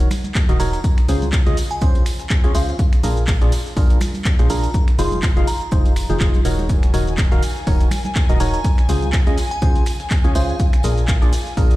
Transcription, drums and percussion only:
0.00 closed hi-hat, shaker
0.11 finger snap, open hi-hat, tambourine, high conga, shaker
0.24 closed hi-hat, tambourine, high conga, shaker
0.35 kick, snare, clap, closed hi-hat, tambourine, shaker
0.49 closed hi-hat, tambourine, shaker
0.60 snare, open hi-hat, tambourine, shaker
0.73 closed hi-hat, tambourine, shaker
0.84 kick, closed hi-hat, tambourine, shaker
0.98 finger snap, closed hi-hat, tambourine, shaker
1.09 open hi-hat, tambourine, shaker
1.22 closed hi-hat, tambourine, high conga, shaker
1.32 finger snap, kick, snare, clap, closed hi-hat, tambourine, shaker
1.46 closed hi-hat, tambourine, shaker
1.57 open hi-hat, tambourine, shaker
1.71 closed hi-hat, tambourine, shaker
1.82 kick, closed hi-hat, tambourine, shaker
1.95 closed hi-hat, tambourine, shaker
2.06 finger snap, open hi-hat, tambourine, shaker
2.19 snare, closed hi-hat, tambourine, shaker
2.30 kick, snare, clap, closed hi-hat, tambourine, shaker
2.44 closed hi-hat, tambourine, shaker
2.54 open hi-hat, tambourine, shaker
2.68 tambourine, shaker
2.79 kick, closed hi-hat, tambourine, shaker
2.92 finger snap, closed hi-hat, tambourine, shaker
3.03 open hi-hat, tambourine, shaker
3.17 closed hi-hat, tambourine, shaker
3.27 kick, snare, clap, closed hi-hat, tambourine, shaker
3.41 closed hi-hat, tambourine, shaker
3.52 open hi-hat, tambourine, shaker
3.66 snare, tambourine, shaker
3.76 kick, closed hi-hat, open hi-hat, tambourine, shaker
3.89 closed hi-hat, tambourine, shaker
4.01 finger snap, open hi-hat, tambourine, high conga, shaker
4.14 closed hi-hat, tambourine, high conga, shaker
4.25 kick, snare, clap, closed hi-hat, shaker
4.39 closed hi-hat, tambourine, shaker
4.49 snare, open hi-hat, tambourine, shaker
4.63 closed hi-hat, tambourine, shaker
4.74 kick, closed hi-hat, tambourine, shaker
4.87 finger snap, closed hi-hat, tambourine, shaker
4.99 open hi-hat, tambourine, shaker
5.12 closed hi-hat, tambourine, high conga, shaker
5.23 finger snap, kick, snare, clap, closed hi-hat, tambourine, shaker
5.37 closed hi-hat, tambourine, shaker
5.47 open hi-hat, tambourine, shaker
5.61 closed hi-hat, tambourine, shaker
5.72 kick, closed hi-hat, tambourine, shaker
5.85 closed hi-hat, tambourine, shaker
5.96 finger snap, open hi-hat, tambourine, shaker
6.09 snare, closed hi-hat, tambourine, shaker
6.20 kick, snare, clap, closed hi-hat, tambourine, shaker
6.34 closed hi-hat, tambourine, high conga, shaker
6.45 open hi-hat, tambourine, shaker
6.59 tambourine, high conga, shaker
6.69 kick, closed hi-hat, tambourine, shaker
6.82 finger snap, closed hi-hat, tambourine, shaker
6.94 open hi-hat, tambourine, shaker
7.07 closed hi-hat, tambourine, shaker
7.18 kick, snare, clap, closed hi-hat, tambourine, shaker
7.32 closed hi-hat, tambourine, shaker
7.43 open hi-hat, tambourine, shaker
7.56 snare, tambourine, shaker
7.67 kick, closed hi-hat, open hi-hat, tambourine, shaker
7.80 closed hi-hat, tambourine, shaker
7.91 finger snap, open hi-hat, tambourine, high conga, shaker
8.05 closed hi-hat, tambourine, high conga, shaker
8.15 kick, snare, clap, closed hi-hat, tambourine, shaker
8.29 closed hi-hat, tambourine, shaker
8.40 snare, open hi-hat, tambourine, shaker
8.54 closed hi-hat, tambourine, shaker
8.64 kick, closed hi-hat, tambourine, shaker
8.78 finger snap, closed hi-hat, tambourine, shaker
8.89 open hi-hat, tambourine, shaker
9.02 closed hi-hat, tambourine, high conga, shaker
9.13 finger snap, kick, snare, clap, closed hi-hat, tambourine, shaker
9.26 closed hi-hat, tambourine, shaker
9.38 open hi-hat, tambourine, shaker
9.51 closed hi-hat, tambourine, shaker
9.62 kick, closed hi-hat, tambourine, shaker
9.75 closed hi-hat, tambourine, shaker
9.86 finger snap, open hi-hat, tambourine, shaker
10.00 snare, closed hi-hat, tambourine, shaker
10.10 kick, snare, clap, closed hi-hat, tambourine, shaker
10.24 closed hi-hat, tambourine, shaker
10.35 open hi-hat, tambourine, shaker
10.48 tambourine, shaker
10.59 kick, closed hi-hat, tambourine, shaker
10.73 finger snap, closed hi-hat, shaker
10.83 open hi-hat, tambourine, shaker
10.98 closed hi-hat, tambourine, shaker
11.08 kick, snare, clap, closed hi-hat, tambourine, shaker
11.22 closed hi-hat, tambourine, shaker
11.32 open hi-hat, tambourine, shaker
11.46 snare, tambourine, shaker
11.57 kick, closed hi-hat, open hi-hat, tambourine, shaker
11.70 closed hi-hat, tambourine, shaker

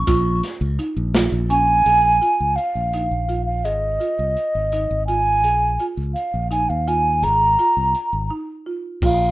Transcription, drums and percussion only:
0.07 kick, closed hi-hat, shaker
0.43 snare, closed hi-hat
0.79 closed hi-hat
1.15 snare, closed hi-hat, shaker
1.50 closed hi-hat, shaker
1.86 closed hi-hat
2.22 closed hi-hat
2.58 closed hi-hat
2.93 closed hi-hat
3.29 closed hi-hat
3.65 closed hi-hat
4.01 closed hi-hat
4.37 closed hi-hat
4.72 closed hi-hat
5.08 closed hi-hat
5.44 closed hi-hat
5.79 closed hi-hat
6.16 closed hi-hat
6.51 closed hi-hat
6.88 closed hi-hat
7.23 closed hi-hat
7.59 closed hi-hat
7.95 closed hi-hat
9.02 kick, crash, shaker

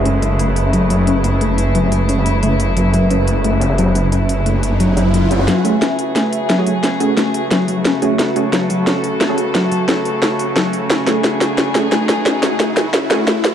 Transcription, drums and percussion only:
0.05 closed hi-hat
0.22 closed hi-hat
0.39 closed hi-hat
0.56 closed hi-hat
0.73 closed hi-hat, open hi-hat
0.90 closed hi-hat
1.07 closed hi-hat
1.24 snare, closed hi-hat
1.40 closed hi-hat
1.58 closed hi-hat
1.75 closed hi-hat
1.84 snare
1.91 closed hi-hat
2.08 closed hi-hat
2.18 snare
2.26 closed hi-hat
2.43 closed hi-hat
2.52 closed hi-hat
2.60 closed hi-hat
2.68 closed hi-hat
2.77 closed hi-hat
2.93 closed hi-hat
3.11 closed hi-hat
3.27 closed hi-hat
3.44 closed hi-hat, open hi-hat
3.61 snare, closed hi-hat
3.70 snare, closed hi-hat
3.78 snare, closed hi-hat
3.86 snare, closed hi-hat
3.95 snare, closed hi-hat
4.04 closed hi-hat
4.12 closed hi-hat
4.29 closed hi-hat
4.46 closed hi-hat
4.54 snare
4.63 closed hi-hat
4.80 closed hi-hat
4.88 snare
4.97 snare, closed hi-hat
5.14 closed hi-hat
5.30 snare, closed hi-hat
5.39 snare, closed hi-hat
5.48 snare, closed hi-hat
5.65 closed hi-hat
5.82 snare, closed hi-hat
5.99 closed hi-hat
6.16 snare, closed hi-hat
6.33 closed hi-hat
6.50 snare, closed hi-hat
6.67 closed hi-hat
6.83 snare, closed hi-hat
7.00 closed hi-hat
7.17 snare, closed hi-hat
7.34 closed hi-hat
7.51 snare, closed hi-hat
7.68 closed hi-hat
7.85 snare, closed hi-hat
8.02 closed hi-hat
8.19 snare, closed hi-hat
8.36 closed hi-hat
8.53 snare, closed hi-hat
8.70 closed hi-hat
8.87 snare, closed hi-hat
9.04 closed hi-hat
9.21 snare, closed hi-hat
9.38 closed hi-hat
9.55 snare, closed hi-hat
9.72 closed hi-hat
9.89 snare, closed hi-hat
10.05 closed hi-hat
10.22 snare, closed hi-hat
10.39 closed hi-hat
10.56 snare, closed hi-hat
10.73 closed hi-hat
10.90 snare, closed hi-hat
11.07 snare, closed hi-hat
11.24 snare, closed hi-hat
11.41 snare, closed hi-hat
11.58 snare, closed hi-hat
11.75 snare, closed hi-hat
11.92 snare, closed hi-hat
12.09 snare, closed hi-hat
12.26 snare, closed hi-hat
12.43 snare, closed hi-hat
12.60 snare, closed hi-hat
12.77 snare, closed hi-hat
12.94 snare, closed hi-hat
13.11 snare, closed hi-hat
13.28 snare, closed hi-hat
13.44 snare, closed hi-hat

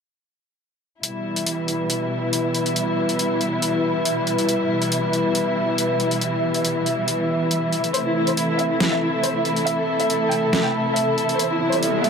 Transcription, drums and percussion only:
1.03 closed hi-hat
1.36 closed hi-hat
1.46 closed hi-hat
1.68 closed hi-hat
1.90 closed hi-hat
2.33 closed hi-hat
2.54 closed hi-hat
2.66 closed hi-hat
2.76 closed hi-hat
3.09 closed hi-hat
3.19 closed hi-hat
3.41 closed hi-hat
3.62 closed hi-hat
4.05 closed hi-hat
4.27 closed hi-hat
4.38 closed hi-hat
4.49 closed hi-hat
4.82 closed hi-hat
4.92 closed hi-hat
5.13 closed hi-hat
5.35 closed hi-hat
5.78 closed hi-hat
6.00 closed hi-hat
6.11 closed hi-hat
6.21 closed hi-hat
6.54 closed hi-hat
6.65 closed hi-hat
6.86 closed hi-hat
7.08 closed hi-hat
7.51 closed hi-hat
7.73 closed hi-hat
7.84 closed hi-hat
7.94 closed hi-hat
8.27 closed hi-hat
8.37 closed hi-hat
8.59 closed hi-hat
8.80 snare, closed hi-hat
9.24 closed hi-hat
9.45 closed hi-hat
9.56 closed hi-hat
9.67 closed hi-hat
10.00 closed hi-hat
10.10 closed hi-hat
10.31 closed hi-hat
10.53 snare, closed hi-hat
10.96 closed hi-hat
11.18 closed hi-hat
11.29 closed hi-hat
11.39 closed hi-hat
11.72 closed hi-hat
11.83 closed hi-hat
12.04 closed hi-hat

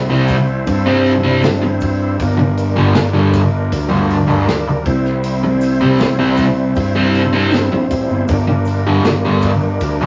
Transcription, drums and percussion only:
0.28 kick, open hi-hat, shaker
0.47 shaker
0.67 kick, open hi-hat, shaker
1.06 open hi-hat
1.24 shaker
1.42 snare, open hi-hat, shaker
1.80 kick, open hi-hat, shaker
2.19 kick, open hi-hat, shaker
2.57 open hi-hat, shaker
2.95 snare, open hi-hat, shaker
3.33 kick, open hi-hat, shaker
3.53 shaker
3.72 kick, open hi-hat, shaker
4.10 open hi-hat
4.29 shaker
4.49 snare, open hi-hat, shaker
4.86 kick, open hi-hat
5.05 snare, shaker
5.24 open hi-hat, shaker
5.61 open hi-hat, shaker
5.80 shaker
5.99 snare, open hi-hat, shaker
6.37 kick, open hi-hat, shaker
6.57 shaker
6.76 kick, open hi-hat, shaker
7.15 open hi-hat
7.33 shaker
7.52 snare, open hi-hat, shaker
7.90 kick, open hi-hat, shaker
8.09 shaker
8.28 kick, open hi-hat, shaker
8.65 open hi-hat, shaker
9.04 snare, open hi-hat, shaker
9.42 kick, open hi-hat, shaker
9.61 shaker
9.80 kick, open hi-hat, shaker

